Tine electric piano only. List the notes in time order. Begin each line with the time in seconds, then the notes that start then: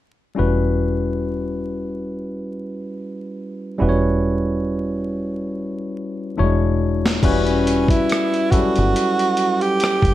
0.35 G3 C#4 E4 F#4 B4
3.78 G3 C#4 E4 F#4 B4
3.89 C#5
6.37 G3 D4 E4 F#4 C#5
6.43 G#3
7.23 G3 C#4 E4 F#4 B4
8.52 F#3 C#4 E4 A4 F#5
8.58 G3